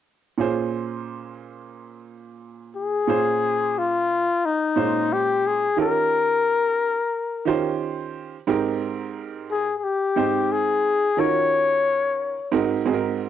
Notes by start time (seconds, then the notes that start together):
0.38 A#2 C#4 F4 G#4 C5
2.77 G#4
3.08 A#2 C#4 F4 G#4 C5
3.79 F4
4.46 D#4
4.76 A#2 G#3 C#4 F4 C5
5.13 G4
5.47 G#4
5.76 D#3 C#4 F4 G4 A#4
5.81 A#4
7.45 D#3 C#4 F4 G4 C5
8.47 G#2 C4 D#4 G4 A#4
9.51 G#4
9.78 G#4
9.84 G4
10.16 G#2 C4 D#4 C5 G5
10.53 G#4
11.17 D#3 C#4 F4 F#4 A#4 C#5
12.52 G#2 C4 D#4 F#4 A#4
12.85 G#2 C4 D#4 F#4 G#4
12.93 A#4